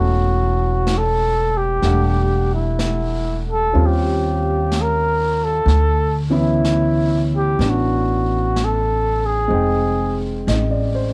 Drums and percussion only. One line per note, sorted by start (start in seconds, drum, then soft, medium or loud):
0.87 brush sweep soft
0.87 snare soft
0.87 hi-hat pedal soft
1.82 brush sweep soft
1.82 snare soft
2.79 brush sweep soft
2.79 snare soft
2.79 hi-hat pedal soft
3.75 brush sweep soft
4.72 brush sweep soft
4.72 snare soft
4.72 hi-hat pedal soft
5.68 brush sweep soft
5.68 snare soft
6.65 brush sweep soft
6.65 snare soft
6.65 hi-hat pedal medium
7.60 brush sweep soft
7.60 snare soft
8.56 brush sweep soft
8.56 snare soft
8.56 hi-hat pedal soft
9.53 brush sweep soft
10.48 brush sweep soft
10.48 snare soft
10.48 hi-hat pedal soft